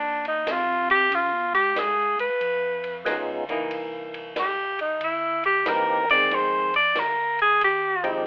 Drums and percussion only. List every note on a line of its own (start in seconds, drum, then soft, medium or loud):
0.25 ride soft
0.47 snare medium
0.47 hi-hat pedal medium
0.47 ride medium
0.90 kick medium
0.90 ride soft
1.12 ride medium
1.54 ride soft
1.76 snare medium
1.76 hi-hat pedal medium
1.76 ride medium
2.19 ride soft
2.41 ride medium
2.84 ride soft
3.06 snare medium
3.06 hi-hat pedal medium
3.06 ride medium
3.49 kick medium
3.49 ride soft
3.71 ride medium
4.14 ride soft
4.36 snare medium
4.36 hi-hat pedal medium
4.36 ride medium
4.79 ride soft
5.01 ride medium
5.43 ride soft
5.66 snare medium
5.66 hi-hat pedal medium
5.66 ride medium
6.09 ride soft
6.31 ride medium
6.74 ride soft
6.95 snare medium
6.95 hi-hat pedal medium
6.95 ride medium
7.39 ride soft
7.61 ride medium
8.04 ride soft